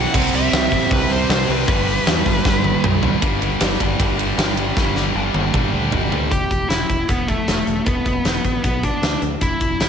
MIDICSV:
0, 0, Header, 1, 7, 480
1, 0, Start_track
1, 0, Tempo, 386100
1, 184, Time_signature, 4, 2, 24, 8
1, 12294, End_track
2, 0, Start_track
2, 0, Title_t, "Lead electric guitar"
2, 0, Program_c, 0, 29
2, 0, Note_on_c, 0, 78, 113
2, 403, Note_off_c, 0, 78, 0
2, 436, Note_on_c, 0, 76, 90
2, 1097, Note_off_c, 0, 76, 0
2, 1152, Note_on_c, 0, 71, 90
2, 1369, Note_off_c, 0, 71, 0
2, 1395, Note_on_c, 0, 72, 79
2, 1610, Note_off_c, 0, 72, 0
2, 1641, Note_on_c, 0, 72, 94
2, 1880, Note_off_c, 0, 72, 0
2, 1880, Note_on_c, 0, 71, 78
2, 3542, Note_off_c, 0, 71, 0
2, 7849, Note_on_c, 0, 67, 102
2, 8296, Note_off_c, 0, 67, 0
2, 8315, Note_on_c, 0, 64, 90
2, 8805, Note_on_c, 0, 59, 81
2, 8818, Note_off_c, 0, 64, 0
2, 9031, Note_off_c, 0, 59, 0
2, 9059, Note_on_c, 0, 57, 78
2, 9767, Note_off_c, 0, 57, 0
2, 9772, Note_on_c, 0, 59, 88
2, 10719, Note_off_c, 0, 59, 0
2, 10733, Note_on_c, 0, 59, 74
2, 10983, Note_off_c, 0, 59, 0
2, 10990, Note_on_c, 0, 62, 78
2, 11432, Note_off_c, 0, 62, 0
2, 11708, Note_on_c, 0, 64, 91
2, 12181, Note_off_c, 0, 64, 0
2, 12196, Note_on_c, 0, 64, 97
2, 12294, Note_off_c, 0, 64, 0
2, 12294, End_track
3, 0, Start_track
3, 0, Title_t, "Distorted electric guitar"
3, 0, Program_c, 1, 30
3, 0, Note_on_c, 1, 40, 65
3, 0, Note_on_c, 1, 47, 85
3, 0, Note_on_c, 1, 52, 90
3, 149, Note_off_c, 1, 47, 0
3, 154, Note_on_c, 1, 48, 81
3, 161, Note_off_c, 1, 52, 0
3, 179, Note_on_c, 1, 55, 100
3, 182, Note_off_c, 1, 40, 0
3, 195, Note_on_c, 1, 60, 98
3, 1809, Note_off_c, 1, 60, 0
3, 1824, Note_on_c, 1, 60, 88
3, 1828, Note_off_c, 1, 48, 0
3, 1840, Note_off_c, 1, 55, 0
3, 1845, Note_on_c, 1, 55, 86
3, 1863, Note_on_c, 1, 48, 65
3, 2065, Note_off_c, 1, 60, 0
3, 2079, Note_on_c, 1, 43, 92
3, 2085, Note_off_c, 1, 48, 0
3, 2095, Note_on_c, 1, 50, 101
3, 2106, Note_off_c, 1, 55, 0
3, 2111, Note_on_c, 1, 55, 111
3, 3737, Note_off_c, 1, 55, 0
3, 3747, Note_off_c, 1, 43, 0
3, 3752, Note_on_c, 1, 55, 82
3, 3755, Note_off_c, 1, 50, 0
3, 3769, Note_on_c, 1, 50, 74
3, 3787, Note_on_c, 1, 43, 71
3, 3985, Note_off_c, 1, 43, 0
3, 3986, Note_off_c, 1, 55, 0
3, 3995, Note_off_c, 1, 50, 0
3, 4000, Note_on_c, 1, 43, 85
3, 4007, Note_on_c, 1, 50, 104
3, 4016, Note_on_c, 1, 55, 100
3, 4235, Note_off_c, 1, 50, 0
3, 4240, Note_off_c, 1, 43, 0
3, 4245, Note_on_c, 1, 43, 89
3, 4250, Note_on_c, 1, 50, 93
3, 4252, Note_off_c, 1, 55, 0
3, 4257, Note_on_c, 1, 55, 106
3, 4474, Note_off_c, 1, 50, 0
3, 4476, Note_off_c, 1, 43, 0
3, 4481, Note_on_c, 1, 43, 75
3, 4488, Note_on_c, 1, 50, 85
3, 4496, Note_off_c, 1, 55, 0
3, 4501, Note_on_c, 1, 55, 92
3, 4709, Note_off_c, 1, 50, 0
3, 4715, Note_off_c, 1, 43, 0
3, 4720, Note_on_c, 1, 43, 85
3, 4721, Note_off_c, 1, 55, 0
3, 4724, Note_on_c, 1, 50, 89
3, 4726, Note_on_c, 1, 55, 90
3, 4945, Note_off_c, 1, 43, 0
3, 4953, Note_off_c, 1, 50, 0
3, 4960, Note_on_c, 1, 43, 96
3, 4968, Note_on_c, 1, 50, 88
3, 4973, Note_off_c, 1, 55, 0
3, 4978, Note_on_c, 1, 55, 111
3, 5180, Note_off_c, 1, 43, 0
3, 5189, Note_off_c, 1, 50, 0
3, 5195, Note_on_c, 1, 43, 89
3, 5204, Note_on_c, 1, 50, 89
3, 5209, Note_off_c, 1, 55, 0
3, 5214, Note_on_c, 1, 55, 95
3, 5422, Note_off_c, 1, 43, 0
3, 5430, Note_off_c, 1, 50, 0
3, 5437, Note_on_c, 1, 43, 84
3, 5445, Note_on_c, 1, 50, 102
3, 5449, Note_off_c, 1, 55, 0
3, 5454, Note_on_c, 1, 55, 114
3, 5663, Note_off_c, 1, 43, 0
3, 5669, Note_off_c, 1, 50, 0
3, 5678, Note_on_c, 1, 43, 77
3, 5684, Note_on_c, 1, 50, 81
3, 5686, Note_off_c, 1, 55, 0
3, 5691, Note_on_c, 1, 55, 83
3, 5904, Note_off_c, 1, 43, 0
3, 5904, Note_off_c, 1, 50, 0
3, 5919, Note_on_c, 1, 43, 99
3, 5919, Note_on_c, 1, 50, 96
3, 5920, Note_off_c, 1, 55, 0
3, 5934, Note_on_c, 1, 55, 108
3, 6139, Note_off_c, 1, 43, 0
3, 6148, Note_off_c, 1, 50, 0
3, 6154, Note_on_c, 1, 43, 77
3, 6156, Note_off_c, 1, 55, 0
3, 6163, Note_on_c, 1, 50, 90
3, 6171, Note_on_c, 1, 55, 105
3, 6387, Note_off_c, 1, 43, 0
3, 6393, Note_off_c, 1, 50, 0
3, 6400, Note_off_c, 1, 55, 0
3, 6402, Note_on_c, 1, 43, 75
3, 6408, Note_on_c, 1, 50, 74
3, 6415, Note_on_c, 1, 55, 98
3, 6622, Note_off_c, 1, 43, 0
3, 6634, Note_off_c, 1, 50, 0
3, 6637, Note_on_c, 1, 43, 79
3, 6641, Note_off_c, 1, 55, 0
3, 6649, Note_on_c, 1, 50, 93
3, 6656, Note_on_c, 1, 55, 80
3, 6867, Note_off_c, 1, 43, 0
3, 6871, Note_off_c, 1, 50, 0
3, 6875, Note_off_c, 1, 55, 0
3, 6882, Note_on_c, 1, 43, 87
3, 6886, Note_on_c, 1, 50, 90
3, 6889, Note_on_c, 1, 55, 96
3, 7103, Note_off_c, 1, 43, 0
3, 7110, Note_off_c, 1, 50, 0
3, 7116, Note_off_c, 1, 55, 0
3, 7118, Note_on_c, 1, 43, 79
3, 7125, Note_on_c, 1, 50, 97
3, 7131, Note_on_c, 1, 55, 94
3, 7340, Note_off_c, 1, 43, 0
3, 7347, Note_off_c, 1, 50, 0
3, 7348, Note_off_c, 1, 55, 0
3, 7355, Note_on_c, 1, 43, 104
3, 7362, Note_on_c, 1, 50, 95
3, 7363, Note_on_c, 1, 55, 99
3, 7573, Note_off_c, 1, 43, 0
3, 7585, Note_off_c, 1, 50, 0
3, 7588, Note_on_c, 1, 43, 80
3, 7590, Note_off_c, 1, 55, 0
3, 7600, Note_on_c, 1, 50, 83
3, 7605, Note_on_c, 1, 55, 83
3, 7824, Note_off_c, 1, 43, 0
3, 7830, Note_off_c, 1, 50, 0
3, 7832, Note_off_c, 1, 55, 0
3, 12294, End_track
4, 0, Start_track
4, 0, Title_t, "Distorted electric guitar"
4, 0, Program_c, 2, 30
4, 0, Note_on_c, 2, 40, 62
4, 0, Note_on_c, 2, 47, 79
4, 0, Note_on_c, 2, 52, 79
4, 159, Note_off_c, 2, 52, 0
4, 165, Note_off_c, 2, 47, 0
4, 170, Note_on_c, 2, 48, 70
4, 174, Note_off_c, 2, 40, 0
4, 184, Note_on_c, 2, 55, 84
4, 202, Note_on_c, 2, 60, 88
4, 878, Note_off_c, 2, 60, 0
4, 880, Note_off_c, 2, 48, 0
4, 893, Note_on_c, 2, 60, 97
4, 902, Note_off_c, 2, 55, 0
4, 907, Note_on_c, 2, 55, 77
4, 922, Note_on_c, 2, 48, 68
4, 2074, Note_on_c, 2, 43, 85
4, 2078, Note_off_c, 2, 60, 0
4, 2087, Note_off_c, 2, 48, 0
4, 2092, Note_on_c, 2, 50, 84
4, 2098, Note_off_c, 2, 55, 0
4, 2103, Note_on_c, 2, 55, 92
4, 2788, Note_off_c, 2, 43, 0
4, 2789, Note_off_c, 2, 55, 0
4, 2797, Note_off_c, 2, 50, 0
4, 2804, Note_on_c, 2, 55, 85
4, 2816, Note_on_c, 2, 50, 80
4, 2834, Note_on_c, 2, 43, 70
4, 3990, Note_off_c, 2, 55, 0
4, 3997, Note_off_c, 2, 50, 0
4, 4006, Note_off_c, 2, 43, 0
4, 12294, End_track
5, 0, Start_track
5, 0, Title_t, "Distorted electric guitar"
5, 0, Program_c, 3, 30
5, 0, Note_on_c, 3, 40, 96
5, 0, Note_on_c, 3, 47, 94
5, 0, Note_on_c, 3, 52, 110
5, 160, Note_off_c, 3, 40, 0
5, 165, Note_off_c, 3, 47, 0
5, 175, Note_off_c, 3, 52, 0
5, 12294, End_track
6, 0, Start_track
6, 0, Title_t, "Fingered electric bass"
6, 0, Program_c, 4, 33
6, 177, Note_on_c, 4, 36, 92
6, 360, Note_off_c, 4, 36, 0
6, 410, Note_on_c, 4, 36, 80
6, 595, Note_off_c, 4, 36, 0
6, 647, Note_on_c, 4, 36, 88
6, 833, Note_off_c, 4, 36, 0
6, 893, Note_on_c, 4, 33, 87
6, 1076, Note_off_c, 4, 33, 0
6, 1130, Note_on_c, 4, 36, 112
6, 1314, Note_off_c, 4, 36, 0
6, 1363, Note_on_c, 4, 36, 90
6, 1549, Note_off_c, 4, 36, 0
6, 1605, Note_on_c, 4, 36, 103
6, 1790, Note_off_c, 4, 36, 0
6, 1844, Note_on_c, 4, 36, 97
6, 2029, Note_off_c, 4, 36, 0
6, 2087, Note_on_c, 4, 31, 90
6, 2451, Note_off_c, 4, 31, 0
6, 2572, Note_on_c, 4, 40, 90
6, 2753, Note_off_c, 4, 40, 0
6, 2809, Note_on_c, 4, 31, 99
6, 2991, Note_off_c, 4, 31, 0
6, 3047, Note_on_c, 4, 31, 91
6, 3410, Note_off_c, 4, 31, 0
6, 3528, Note_on_c, 4, 35, 107
6, 3890, Note_off_c, 4, 35, 0
6, 4006, Note_on_c, 4, 31, 88
6, 4423, Note_off_c, 4, 31, 0
6, 4478, Note_on_c, 4, 31, 84
6, 4690, Note_off_c, 4, 31, 0
6, 4729, Note_on_c, 4, 31, 83
6, 4936, Note_off_c, 4, 31, 0
6, 4964, Note_on_c, 4, 31, 95
6, 5381, Note_off_c, 4, 31, 0
6, 5441, Note_on_c, 4, 31, 96
6, 5859, Note_off_c, 4, 31, 0
6, 5928, Note_on_c, 4, 31, 100
6, 6343, Note_off_c, 4, 31, 0
6, 6400, Note_on_c, 4, 31, 92
6, 6611, Note_off_c, 4, 31, 0
6, 6637, Note_on_c, 4, 31, 81
6, 6849, Note_off_c, 4, 31, 0
6, 6888, Note_on_c, 4, 31, 97
6, 7096, Note_off_c, 4, 31, 0
6, 7128, Note_on_c, 4, 38, 86
6, 7336, Note_off_c, 4, 38, 0
6, 7364, Note_on_c, 4, 31, 82
6, 7573, Note_off_c, 4, 31, 0
6, 7609, Note_on_c, 4, 38, 91
6, 7817, Note_off_c, 4, 38, 0
6, 7849, Note_on_c, 4, 28, 77
6, 8006, Note_off_c, 4, 28, 0
6, 8091, Note_on_c, 4, 28, 76
6, 8248, Note_off_c, 4, 28, 0
6, 8328, Note_on_c, 4, 28, 77
6, 8486, Note_off_c, 4, 28, 0
6, 8574, Note_on_c, 4, 28, 78
6, 8730, Note_off_c, 4, 28, 0
6, 8816, Note_on_c, 4, 28, 91
6, 9129, Note_off_c, 4, 28, 0
6, 9294, Note_on_c, 4, 28, 88
6, 9450, Note_off_c, 4, 28, 0
6, 9534, Note_on_c, 4, 28, 88
6, 9691, Note_off_c, 4, 28, 0
6, 9779, Note_on_c, 4, 28, 88
6, 9935, Note_off_c, 4, 28, 0
6, 10015, Note_on_c, 4, 28, 73
6, 10172, Note_off_c, 4, 28, 0
6, 10253, Note_on_c, 4, 28, 84
6, 10411, Note_off_c, 4, 28, 0
6, 10497, Note_on_c, 4, 33, 81
6, 10654, Note_off_c, 4, 33, 0
6, 10743, Note_on_c, 4, 35, 93
6, 11056, Note_off_c, 4, 35, 0
6, 11216, Note_on_c, 4, 38, 78
6, 11374, Note_off_c, 4, 38, 0
6, 11458, Note_on_c, 4, 38, 86
6, 11616, Note_off_c, 4, 38, 0
6, 11707, Note_on_c, 4, 28, 80
6, 11863, Note_off_c, 4, 28, 0
6, 11944, Note_on_c, 4, 28, 70
6, 12101, Note_off_c, 4, 28, 0
6, 12183, Note_on_c, 4, 28, 82
6, 12294, Note_off_c, 4, 28, 0
6, 12294, End_track
7, 0, Start_track
7, 0, Title_t, "Drums"
7, 177, Note_on_c, 9, 36, 111
7, 181, Note_on_c, 9, 49, 97
7, 301, Note_off_c, 9, 36, 0
7, 305, Note_off_c, 9, 49, 0
7, 421, Note_on_c, 9, 46, 67
7, 545, Note_off_c, 9, 46, 0
7, 659, Note_on_c, 9, 46, 89
7, 664, Note_on_c, 9, 38, 118
7, 783, Note_off_c, 9, 46, 0
7, 788, Note_off_c, 9, 38, 0
7, 894, Note_on_c, 9, 36, 78
7, 899, Note_on_c, 9, 46, 61
7, 1018, Note_off_c, 9, 36, 0
7, 1023, Note_off_c, 9, 46, 0
7, 1131, Note_on_c, 9, 36, 118
7, 1134, Note_on_c, 9, 46, 97
7, 1256, Note_off_c, 9, 36, 0
7, 1258, Note_off_c, 9, 46, 0
7, 1379, Note_on_c, 9, 46, 52
7, 1503, Note_off_c, 9, 46, 0
7, 1614, Note_on_c, 9, 46, 94
7, 1619, Note_on_c, 9, 38, 109
7, 1738, Note_off_c, 9, 46, 0
7, 1743, Note_off_c, 9, 38, 0
7, 1856, Note_on_c, 9, 46, 61
7, 1981, Note_off_c, 9, 46, 0
7, 2089, Note_on_c, 9, 36, 117
7, 2090, Note_on_c, 9, 46, 81
7, 2213, Note_off_c, 9, 36, 0
7, 2214, Note_off_c, 9, 46, 0
7, 2335, Note_on_c, 9, 46, 56
7, 2459, Note_off_c, 9, 46, 0
7, 2571, Note_on_c, 9, 46, 74
7, 2576, Note_on_c, 9, 38, 115
7, 2695, Note_off_c, 9, 46, 0
7, 2700, Note_off_c, 9, 38, 0
7, 2809, Note_on_c, 9, 36, 79
7, 2813, Note_on_c, 9, 46, 56
7, 2933, Note_off_c, 9, 36, 0
7, 2937, Note_off_c, 9, 46, 0
7, 3047, Note_on_c, 9, 36, 122
7, 3053, Note_on_c, 9, 38, 70
7, 3172, Note_off_c, 9, 36, 0
7, 3177, Note_off_c, 9, 38, 0
7, 3285, Note_on_c, 9, 48, 62
7, 3409, Note_off_c, 9, 48, 0
7, 3530, Note_on_c, 9, 45, 96
7, 3654, Note_off_c, 9, 45, 0
7, 3764, Note_on_c, 9, 43, 88
7, 3888, Note_off_c, 9, 43, 0
7, 4004, Note_on_c, 9, 51, 97
7, 4006, Note_on_c, 9, 36, 112
7, 4129, Note_off_c, 9, 51, 0
7, 4130, Note_off_c, 9, 36, 0
7, 4249, Note_on_c, 9, 51, 63
7, 4373, Note_off_c, 9, 51, 0
7, 4482, Note_on_c, 9, 51, 100
7, 4487, Note_on_c, 9, 38, 121
7, 4606, Note_off_c, 9, 51, 0
7, 4611, Note_off_c, 9, 38, 0
7, 4727, Note_on_c, 9, 36, 74
7, 4729, Note_on_c, 9, 51, 72
7, 4852, Note_off_c, 9, 36, 0
7, 4853, Note_off_c, 9, 51, 0
7, 4968, Note_on_c, 9, 36, 112
7, 4970, Note_on_c, 9, 51, 101
7, 5092, Note_off_c, 9, 36, 0
7, 5095, Note_off_c, 9, 51, 0
7, 5211, Note_on_c, 9, 51, 65
7, 5335, Note_off_c, 9, 51, 0
7, 5451, Note_on_c, 9, 51, 81
7, 5456, Note_on_c, 9, 38, 103
7, 5575, Note_off_c, 9, 51, 0
7, 5580, Note_off_c, 9, 38, 0
7, 5684, Note_on_c, 9, 51, 69
7, 5809, Note_off_c, 9, 51, 0
7, 5927, Note_on_c, 9, 36, 108
7, 5931, Note_on_c, 9, 38, 58
7, 6051, Note_off_c, 9, 36, 0
7, 6056, Note_off_c, 9, 38, 0
7, 6169, Note_on_c, 9, 38, 54
7, 6293, Note_off_c, 9, 38, 0
7, 6644, Note_on_c, 9, 48, 64
7, 6768, Note_off_c, 9, 48, 0
7, 6886, Note_on_c, 9, 47, 91
7, 6887, Note_on_c, 9, 36, 110
7, 7010, Note_off_c, 9, 47, 0
7, 7011, Note_off_c, 9, 36, 0
7, 7363, Note_on_c, 9, 43, 96
7, 7487, Note_off_c, 9, 43, 0
7, 7611, Note_on_c, 9, 43, 78
7, 7735, Note_off_c, 9, 43, 0
7, 7851, Note_on_c, 9, 36, 93
7, 7853, Note_on_c, 9, 42, 75
7, 7975, Note_off_c, 9, 36, 0
7, 7978, Note_off_c, 9, 42, 0
7, 8091, Note_on_c, 9, 36, 73
7, 8092, Note_on_c, 9, 42, 58
7, 8215, Note_off_c, 9, 36, 0
7, 8217, Note_off_c, 9, 42, 0
7, 8331, Note_on_c, 9, 42, 75
7, 8336, Note_on_c, 9, 38, 100
7, 8455, Note_off_c, 9, 42, 0
7, 8460, Note_off_c, 9, 38, 0
7, 8573, Note_on_c, 9, 36, 72
7, 8573, Note_on_c, 9, 42, 56
7, 8697, Note_off_c, 9, 42, 0
7, 8698, Note_off_c, 9, 36, 0
7, 8810, Note_on_c, 9, 42, 77
7, 8814, Note_on_c, 9, 36, 104
7, 8934, Note_off_c, 9, 42, 0
7, 8938, Note_off_c, 9, 36, 0
7, 9055, Note_on_c, 9, 36, 71
7, 9055, Note_on_c, 9, 42, 49
7, 9179, Note_off_c, 9, 42, 0
7, 9180, Note_off_c, 9, 36, 0
7, 9296, Note_on_c, 9, 42, 74
7, 9301, Note_on_c, 9, 38, 87
7, 9420, Note_off_c, 9, 42, 0
7, 9425, Note_off_c, 9, 38, 0
7, 9536, Note_on_c, 9, 42, 52
7, 9661, Note_off_c, 9, 42, 0
7, 9773, Note_on_c, 9, 42, 66
7, 9778, Note_on_c, 9, 36, 103
7, 9897, Note_off_c, 9, 42, 0
7, 9902, Note_off_c, 9, 36, 0
7, 10014, Note_on_c, 9, 42, 53
7, 10018, Note_on_c, 9, 36, 73
7, 10138, Note_off_c, 9, 42, 0
7, 10143, Note_off_c, 9, 36, 0
7, 10257, Note_on_c, 9, 42, 72
7, 10262, Note_on_c, 9, 38, 97
7, 10381, Note_off_c, 9, 42, 0
7, 10386, Note_off_c, 9, 38, 0
7, 10499, Note_on_c, 9, 42, 57
7, 10500, Note_on_c, 9, 36, 68
7, 10623, Note_off_c, 9, 42, 0
7, 10625, Note_off_c, 9, 36, 0
7, 10740, Note_on_c, 9, 42, 76
7, 10742, Note_on_c, 9, 36, 101
7, 10864, Note_off_c, 9, 42, 0
7, 10866, Note_off_c, 9, 36, 0
7, 10983, Note_on_c, 9, 36, 67
7, 10983, Note_on_c, 9, 42, 53
7, 11107, Note_off_c, 9, 36, 0
7, 11107, Note_off_c, 9, 42, 0
7, 11224, Note_on_c, 9, 42, 78
7, 11229, Note_on_c, 9, 38, 110
7, 11348, Note_off_c, 9, 42, 0
7, 11353, Note_off_c, 9, 38, 0
7, 11460, Note_on_c, 9, 42, 60
7, 11585, Note_off_c, 9, 42, 0
7, 11700, Note_on_c, 9, 42, 73
7, 11704, Note_on_c, 9, 36, 86
7, 11825, Note_off_c, 9, 42, 0
7, 11828, Note_off_c, 9, 36, 0
7, 11941, Note_on_c, 9, 42, 59
7, 11946, Note_on_c, 9, 36, 72
7, 12065, Note_off_c, 9, 42, 0
7, 12070, Note_off_c, 9, 36, 0
7, 12187, Note_on_c, 9, 42, 75
7, 12192, Note_on_c, 9, 38, 99
7, 12294, Note_off_c, 9, 38, 0
7, 12294, Note_off_c, 9, 42, 0
7, 12294, End_track
0, 0, End_of_file